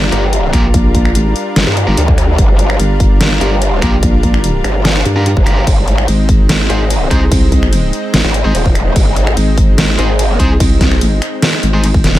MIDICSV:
0, 0, Header, 1, 6, 480
1, 0, Start_track
1, 0, Tempo, 410959
1, 864, Time_signature, 4, 2, 24, 8
1, 14239, End_track
2, 0, Start_track
2, 0, Title_t, "Distorted electric guitar"
2, 0, Program_c, 0, 30
2, 141, Note_on_c, 0, 70, 110
2, 146, Note_on_c, 0, 67, 80
2, 152, Note_on_c, 0, 65, 88
2, 242, Note_off_c, 0, 65, 0
2, 242, Note_off_c, 0, 67, 0
2, 242, Note_off_c, 0, 70, 0
2, 620, Note_on_c, 0, 70, 100
2, 626, Note_on_c, 0, 67, 79
2, 632, Note_on_c, 0, 65, 85
2, 722, Note_off_c, 0, 65, 0
2, 722, Note_off_c, 0, 67, 0
2, 722, Note_off_c, 0, 70, 0
2, 2187, Note_on_c, 0, 70, 81
2, 2194, Note_on_c, 0, 67, 74
2, 2199, Note_on_c, 0, 65, 75
2, 2279, Note_off_c, 0, 65, 0
2, 2279, Note_off_c, 0, 67, 0
2, 2279, Note_off_c, 0, 70, 0
2, 3982, Note_on_c, 0, 70, 114
2, 3987, Note_on_c, 0, 67, 86
2, 3992, Note_on_c, 0, 65, 85
2, 4082, Note_off_c, 0, 65, 0
2, 4082, Note_off_c, 0, 67, 0
2, 4082, Note_off_c, 0, 70, 0
2, 4461, Note_on_c, 0, 70, 101
2, 4466, Note_on_c, 0, 67, 79
2, 4471, Note_on_c, 0, 65, 68
2, 4562, Note_off_c, 0, 65, 0
2, 4562, Note_off_c, 0, 67, 0
2, 4562, Note_off_c, 0, 70, 0
2, 6027, Note_on_c, 0, 70, 106
2, 6031, Note_on_c, 0, 67, 86
2, 6034, Note_on_c, 0, 65, 85
2, 6118, Note_off_c, 0, 65, 0
2, 6118, Note_off_c, 0, 67, 0
2, 6119, Note_off_c, 0, 70, 0
2, 6381, Note_on_c, 0, 70, 98
2, 6387, Note_on_c, 0, 67, 81
2, 6393, Note_on_c, 0, 65, 80
2, 6537, Note_off_c, 0, 65, 0
2, 6538, Note_off_c, 0, 67, 0
2, 6538, Note_off_c, 0, 70, 0
2, 7823, Note_on_c, 0, 72, 115
2, 7824, Note_on_c, 0, 68, 89
2, 7829, Note_on_c, 0, 63, 83
2, 7922, Note_off_c, 0, 63, 0
2, 7922, Note_off_c, 0, 68, 0
2, 7922, Note_off_c, 0, 72, 0
2, 8302, Note_on_c, 0, 72, 95
2, 8307, Note_on_c, 0, 68, 84
2, 8312, Note_on_c, 0, 63, 90
2, 8402, Note_off_c, 0, 63, 0
2, 8402, Note_off_c, 0, 68, 0
2, 8402, Note_off_c, 0, 72, 0
2, 9866, Note_on_c, 0, 72, 94
2, 9871, Note_on_c, 0, 68, 69
2, 9878, Note_on_c, 0, 63, 80
2, 9959, Note_off_c, 0, 63, 0
2, 9959, Note_off_c, 0, 68, 0
2, 9959, Note_off_c, 0, 72, 0
2, 11661, Note_on_c, 0, 72, 110
2, 11665, Note_on_c, 0, 68, 88
2, 11670, Note_on_c, 0, 63, 88
2, 11762, Note_off_c, 0, 63, 0
2, 11762, Note_off_c, 0, 68, 0
2, 11762, Note_off_c, 0, 72, 0
2, 12142, Note_on_c, 0, 72, 95
2, 12145, Note_on_c, 0, 68, 89
2, 12149, Note_on_c, 0, 63, 80
2, 12242, Note_off_c, 0, 63, 0
2, 12242, Note_off_c, 0, 68, 0
2, 12242, Note_off_c, 0, 72, 0
2, 13708, Note_on_c, 0, 72, 95
2, 13711, Note_on_c, 0, 68, 71
2, 13716, Note_on_c, 0, 63, 67
2, 13799, Note_off_c, 0, 63, 0
2, 13799, Note_off_c, 0, 68, 0
2, 13799, Note_off_c, 0, 72, 0
2, 14239, End_track
3, 0, Start_track
3, 0, Title_t, "Analog synth pad"
3, 0, Program_c, 1, 89
3, 0, Note_on_c, 1, 55, 86
3, 0, Note_on_c, 1, 62, 77
3, 0, Note_on_c, 1, 65, 76
3, 0, Note_on_c, 1, 70, 91
3, 6578, Note_off_c, 1, 55, 0
3, 6578, Note_off_c, 1, 62, 0
3, 6578, Note_off_c, 1, 65, 0
3, 6578, Note_off_c, 1, 70, 0
3, 6625, Note_on_c, 1, 56, 84
3, 6625, Note_on_c, 1, 60, 78
3, 6625, Note_on_c, 1, 63, 96
3, 14239, Note_off_c, 1, 56, 0
3, 14239, Note_off_c, 1, 60, 0
3, 14239, Note_off_c, 1, 63, 0
3, 14239, End_track
4, 0, Start_track
4, 0, Title_t, "Wobble bass"
4, 0, Program_c, 2, 39
4, 0, Note_on_c, 2, 31, 97
4, 126, Note_off_c, 2, 31, 0
4, 625, Note_on_c, 2, 34, 97
4, 1291, Note_off_c, 2, 34, 0
4, 1291, Note_on_c, 2, 33, 97
4, 1566, Note_off_c, 2, 33, 0
4, 1825, Note_on_c, 2, 31, 96
4, 1930, Note_off_c, 2, 31, 0
4, 2191, Note_on_c, 2, 31, 104
4, 2287, Note_off_c, 2, 31, 0
4, 3265, Note_on_c, 2, 31, 95
4, 3966, Note_off_c, 2, 31, 0
4, 4465, Note_on_c, 2, 34, 98
4, 5406, Note_off_c, 2, 34, 0
4, 5904, Note_on_c, 2, 43, 101
4, 6250, Note_off_c, 2, 43, 0
4, 7104, Note_on_c, 2, 32, 93
4, 7806, Note_off_c, 2, 32, 0
4, 8304, Note_on_c, 2, 36, 97
4, 9246, Note_off_c, 2, 36, 0
4, 9504, Note_on_c, 2, 32, 99
4, 9610, Note_off_c, 2, 32, 0
4, 9870, Note_on_c, 2, 32, 103
4, 9966, Note_off_c, 2, 32, 0
4, 10944, Note_on_c, 2, 32, 99
4, 11646, Note_off_c, 2, 32, 0
4, 12144, Note_on_c, 2, 36, 100
4, 13086, Note_off_c, 2, 36, 0
4, 13584, Note_on_c, 2, 32, 101
4, 14046, Note_off_c, 2, 32, 0
4, 14065, Note_on_c, 2, 27, 97
4, 14239, Note_off_c, 2, 27, 0
4, 14239, End_track
5, 0, Start_track
5, 0, Title_t, "Wobble bass"
5, 0, Program_c, 3, 39
5, 144, Note_on_c, 3, 31, 97
5, 606, Note_off_c, 3, 31, 0
5, 1950, Note_on_c, 3, 43, 101
5, 2170, Note_off_c, 3, 43, 0
5, 2304, Note_on_c, 3, 38, 92
5, 2766, Note_off_c, 3, 38, 0
5, 2785, Note_on_c, 3, 31, 94
5, 3246, Note_off_c, 3, 31, 0
5, 3984, Note_on_c, 3, 31, 97
5, 4446, Note_off_c, 3, 31, 0
5, 5423, Note_on_c, 3, 31, 103
5, 5886, Note_off_c, 3, 31, 0
5, 6270, Note_on_c, 3, 31, 102
5, 6366, Note_off_c, 3, 31, 0
5, 6383, Note_on_c, 3, 31, 95
5, 6606, Note_off_c, 3, 31, 0
5, 6623, Note_on_c, 3, 32, 95
5, 7086, Note_off_c, 3, 32, 0
5, 7823, Note_on_c, 3, 32, 98
5, 8286, Note_off_c, 3, 32, 0
5, 9629, Note_on_c, 3, 32, 96
5, 9850, Note_off_c, 3, 32, 0
5, 9983, Note_on_c, 3, 27, 98
5, 10446, Note_off_c, 3, 27, 0
5, 10464, Note_on_c, 3, 32, 95
5, 10926, Note_off_c, 3, 32, 0
5, 11664, Note_on_c, 3, 32, 98
5, 12126, Note_off_c, 3, 32, 0
5, 14239, End_track
6, 0, Start_track
6, 0, Title_t, "Drums"
6, 144, Note_on_c, 9, 42, 55
6, 261, Note_off_c, 9, 42, 0
6, 384, Note_on_c, 9, 42, 81
6, 501, Note_off_c, 9, 42, 0
6, 624, Note_on_c, 9, 26, 50
6, 624, Note_on_c, 9, 42, 56
6, 625, Note_on_c, 9, 36, 62
6, 741, Note_off_c, 9, 26, 0
6, 741, Note_off_c, 9, 36, 0
6, 741, Note_off_c, 9, 42, 0
6, 865, Note_on_c, 9, 36, 125
6, 865, Note_on_c, 9, 42, 83
6, 981, Note_off_c, 9, 36, 0
6, 981, Note_off_c, 9, 42, 0
6, 1105, Note_on_c, 9, 36, 68
6, 1105, Note_on_c, 9, 42, 58
6, 1221, Note_off_c, 9, 36, 0
6, 1221, Note_off_c, 9, 42, 0
6, 1231, Note_on_c, 9, 26, 51
6, 1345, Note_on_c, 9, 42, 83
6, 1348, Note_off_c, 9, 26, 0
6, 1462, Note_off_c, 9, 42, 0
6, 1585, Note_on_c, 9, 46, 97
6, 1702, Note_off_c, 9, 46, 0
6, 1825, Note_on_c, 9, 38, 121
6, 1825, Note_on_c, 9, 42, 81
6, 1942, Note_off_c, 9, 38, 0
6, 1942, Note_off_c, 9, 42, 0
6, 1951, Note_on_c, 9, 26, 52
6, 2066, Note_on_c, 9, 42, 58
6, 2068, Note_off_c, 9, 26, 0
6, 2182, Note_off_c, 9, 42, 0
6, 2306, Note_on_c, 9, 42, 84
6, 2423, Note_off_c, 9, 42, 0
6, 2431, Note_on_c, 9, 36, 112
6, 2545, Note_on_c, 9, 26, 50
6, 2545, Note_on_c, 9, 42, 56
6, 2547, Note_off_c, 9, 36, 0
6, 2662, Note_off_c, 9, 26, 0
6, 2662, Note_off_c, 9, 42, 0
6, 2785, Note_on_c, 9, 36, 127
6, 2785, Note_on_c, 9, 42, 76
6, 2902, Note_off_c, 9, 36, 0
6, 2902, Note_off_c, 9, 42, 0
6, 3025, Note_on_c, 9, 42, 55
6, 3142, Note_off_c, 9, 42, 0
6, 3151, Note_on_c, 9, 26, 55
6, 3265, Note_on_c, 9, 42, 83
6, 3268, Note_off_c, 9, 26, 0
6, 3382, Note_off_c, 9, 42, 0
6, 3505, Note_on_c, 9, 36, 111
6, 3505, Note_on_c, 9, 46, 94
6, 3622, Note_off_c, 9, 36, 0
6, 3622, Note_off_c, 9, 46, 0
6, 3745, Note_on_c, 9, 38, 123
6, 3745, Note_on_c, 9, 42, 81
6, 3862, Note_off_c, 9, 38, 0
6, 3862, Note_off_c, 9, 42, 0
6, 3985, Note_on_c, 9, 42, 52
6, 4102, Note_off_c, 9, 42, 0
6, 4225, Note_on_c, 9, 42, 81
6, 4341, Note_off_c, 9, 42, 0
6, 4464, Note_on_c, 9, 26, 53
6, 4464, Note_on_c, 9, 36, 64
6, 4464, Note_on_c, 9, 42, 54
6, 4581, Note_off_c, 9, 26, 0
6, 4581, Note_off_c, 9, 36, 0
6, 4581, Note_off_c, 9, 42, 0
6, 4704, Note_on_c, 9, 36, 124
6, 4704, Note_on_c, 9, 42, 73
6, 4821, Note_off_c, 9, 36, 0
6, 4821, Note_off_c, 9, 42, 0
6, 4944, Note_on_c, 9, 36, 67
6, 4945, Note_on_c, 9, 42, 52
6, 5061, Note_off_c, 9, 36, 0
6, 5062, Note_off_c, 9, 42, 0
6, 5071, Note_on_c, 9, 26, 57
6, 5184, Note_on_c, 9, 42, 77
6, 5187, Note_off_c, 9, 26, 0
6, 5301, Note_off_c, 9, 42, 0
6, 5424, Note_on_c, 9, 26, 66
6, 5424, Note_on_c, 9, 46, 94
6, 5541, Note_off_c, 9, 26, 0
6, 5541, Note_off_c, 9, 46, 0
6, 5664, Note_on_c, 9, 38, 123
6, 5664, Note_on_c, 9, 42, 75
6, 5781, Note_off_c, 9, 38, 0
6, 5781, Note_off_c, 9, 42, 0
6, 5790, Note_on_c, 9, 26, 55
6, 5904, Note_on_c, 9, 42, 50
6, 5907, Note_off_c, 9, 26, 0
6, 6021, Note_off_c, 9, 42, 0
6, 6144, Note_on_c, 9, 42, 81
6, 6261, Note_off_c, 9, 42, 0
6, 6269, Note_on_c, 9, 36, 115
6, 6384, Note_on_c, 9, 26, 55
6, 6384, Note_on_c, 9, 42, 53
6, 6386, Note_off_c, 9, 36, 0
6, 6501, Note_off_c, 9, 26, 0
6, 6501, Note_off_c, 9, 42, 0
6, 6624, Note_on_c, 9, 36, 124
6, 6624, Note_on_c, 9, 42, 73
6, 6624, Note_on_c, 9, 49, 64
6, 6740, Note_off_c, 9, 36, 0
6, 6741, Note_off_c, 9, 42, 0
6, 6741, Note_off_c, 9, 49, 0
6, 6864, Note_on_c, 9, 42, 52
6, 6981, Note_off_c, 9, 42, 0
6, 6989, Note_on_c, 9, 26, 59
6, 7103, Note_on_c, 9, 42, 74
6, 7103, Note_on_c, 9, 49, 47
6, 7106, Note_off_c, 9, 26, 0
6, 7220, Note_off_c, 9, 42, 0
6, 7220, Note_off_c, 9, 49, 0
6, 7344, Note_on_c, 9, 36, 107
6, 7344, Note_on_c, 9, 46, 91
6, 7461, Note_off_c, 9, 36, 0
6, 7461, Note_off_c, 9, 46, 0
6, 7584, Note_on_c, 9, 38, 119
6, 7584, Note_on_c, 9, 42, 76
6, 7584, Note_on_c, 9, 49, 64
6, 7701, Note_off_c, 9, 38, 0
6, 7701, Note_off_c, 9, 42, 0
6, 7701, Note_off_c, 9, 49, 0
6, 7824, Note_on_c, 9, 42, 51
6, 7941, Note_off_c, 9, 42, 0
6, 8064, Note_on_c, 9, 42, 80
6, 8064, Note_on_c, 9, 49, 47
6, 8181, Note_off_c, 9, 42, 0
6, 8181, Note_off_c, 9, 49, 0
6, 8304, Note_on_c, 9, 36, 61
6, 8305, Note_on_c, 9, 26, 53
6, 8305, Note_on_c, 9, 42, 52
6, 8421, Note_off_c, 9, 36, 0
6, 8422, Note_off_c, 9, 26, 0
6, 8422, Note_off_c, 9, 42, 0
6, 8544, Note_on_c, 9, 36, 120
6, 8545, Note_on_c, 9, 42, 70
6, 8545, Note_on_c, 9, 49, 66
6, 8661, Note_off_c, 9, 36, 0
6, 8662, Note_off_c, 9, 42, 0
6, 8662, Note_off_c, 9, 49, 0
6, 8784, Note_on_c, 9, 36, 62
6, 8784, Note_on_c, 9, 42, 50
6, 8901, Note_off_c, 9, 36, 0
6, 8901, Note_off_c, 9, 42, 0
6, 8910, Note_on_c, 9, 26, 54
6, 9024, Note_on_c, 9, 42, 76
6, 9024, Note_on_c, 9, 49, 47
6, 9027, Note_off_c, 9, 26, 0
6, 9141, Note_off_c, 9, 42, 0
6, 9141, Note_off_c, 9, 49, 0
6, 9265, Note_on_c, 9, 46, 92
6, 9381, Note_off_c, 9, 46, 0
6, 9504, Note_on_c, 9, 38, 114
6, 9504, Note_on_c, 9, 42, 80
6, 9504, Note_on_c, 9, 49, 65
6, 9621, Note_off_c, 9, 38, 0
6, 9621, Note_off_c, 9, 42, 0
6, 9621, Note_off_c, 9, 49, 0
6, 9630, Note_on_c, 9, 26, 56
6, 9744, Note_on_c, 9, 42, 52
6, 9747, Note_off_c, 9, 26, 0
6, 9861, Note_off_c, 9, 42, 0
6, 9984, Note_on_c, 9, 42, 78
6, 9984, Note_on_c, 9, 49, 49
6, 10101, Note_off_c, 9, 42, 0
6, 10101, Note_off_c, 9, 49, 0
6, 10110, Note_on_c, 9, 36, 104
6, 10224, Note_on_c, 9, 26, 55
6, 10224, Note_on_c, 9, 42, 52
6, 10227, Note_off_c, 9, 36, 0
6, 10341, Note_off_c, 9, 26, 0
6, 10341, Note_off_c, 9, 42, 0
6, 10464, Note_on_c, 9, 36, 118
6, 10464, Note_on_c, 9, 42, 74
6, 10464, Note_on_c, 9, 49, 66
6, 10581, Note_off_c, 9, 36, 0
6, 10581, Note_off_c, 9, 42, 0
6, 10581, Note_off_c, 9, 49, 0
6, 10704, Note_on_c, 9, 42, 51
6, 10821, Note_off_c, 9, 42, 0
6, 10829, Note_on_c, 9, 26, 55
6, 10944, Note_on_c, 9, 42, 81
6, 10944, Note_on_c, 9, 49, 51
6, 10946, Note_off_c, 9, 26, 0
6, 11061, Note_off_c, 9, 42, 0
6, 11061, Note_off_c, 9, 49, 0
6, 11184, Note_on_c, 9, 36, 99
6, 11184, Note_on_c, 9, 46, 97
6, 11301, Note_off_c, 9, 36, 0
6, 11301, Note_off_c, 9, 46, 0
6, 11424, Note_on_c, 9, 38, 115
6, 11424, Note_on_c, 9, 42, 76
6, 11424, Note_on_c, 9, 49, 66
6, 11540, Note_off_c, 9, 38, 0
6, 11540, Note_off_c, 9, 42, 0
6, 11540, Note_off_c, 9, 49, 0
6, 11664, Note_on_c, 9, 42, 52
6, 11781, Note_off_c, 9, 42, 0
6, 11904, Note_on_c, 9, 42, 78
6, 11904, Note_on_c, 9, 49, 50
6, 12021, Note_off_c, 9, 42, 0
6, 12021, Note_off_c, 9, 49, 0
6, 12144, Note_on_c, 9, 36, 58
6, 12144, Note_on_c, 9, 42, 55
6, 12261, Note_off_c, 9, 36, 0
6, 12261, Note_off_c, 9, 42, 0
6, 12384, Note_on_c, 9, 36, 121
6, 12384, Note_on_c, 9, 42, 80
6, 12384, Note_on_c, 9, 49, 68
6, 12501, Note_off_c, 9, 36, 0
6, 12501, Note_off_c, 9, 42, 0
6, 12501, Note_off_c, 9, 49, 0
6, 12624, Note_on_c, 9, 36, 63
6, 12624, Note_on_c, 9, 38, 62
6, 12624, Note_on_c, 9, 42, 53
6, 12741, Note_off_c, 9, 36, 0
6, 12741, Note_off_c, 9, 38, 0
6, 12741, Note_off_c, 9, 42, 0
6, 12750, Note_on_c, 9, 26, 55
6, 12864, Note_on_c, 9, 42, 83
6, 12864, Note_on_c, 9, 49, 48
6, 12867, Note_off_c, 9, 26, 0
6, 12981, Note_off_c, 9, 42, 0
6, 12981, Note_off_c, 9, 49, 0
6, 13104, Note_on_c, 9, 26, 61
6, 13104, Note_on_c, 9, 46, 104
6, 13221, Note_off_c, 9, 26, 0
6, 13221, Note_off_c, 9, 46, 0
6, 13344, Note_on_c, 9, 38, 113
6, 13344, Note_on_c, 9, 42, 85
6, 13344, Note_on_c, 9, 49, 66
6, 13461, Note_off_c, 9, 38, 0
6, 13461, Note_off_c, 9, 42, 0
6, 13461, Note_off_c, 9, 49, 0
6, 13469, Note_on_c, 9, 26, 52
6, 13585, Note_on_c, 9, 42, 54
6, 13586, Note_off_c, 9, 26, 0
6, 13701, Note_off_c, 9, 42, 0
6, 13824, Note_on_c, 9, 42, 84
6, 13824, Note_on_c, 9, 49, 50
6, 13941, Note_off_c, 9, 42, 0
6, 13941, Note_off_c, 9, 49, 0
6, 13950, Note_on_c, 9, 36, 104
6, 14064, Note_on_c, 9, 38, 61
6, 14064, Note_on_c, 9, 42, 55
6, 14067, Note_off_c, 9, 36, 0
6, 14181, Note_off_c, 9, 38, 0
6, 14181, Note_off_c, 9, 42, 0
6, 14191, Note_on_c, 9, 38, 77
6, 14239, Note_off_c, 9, 38, 0
6, 14239, End_track
0, 0, End_of_file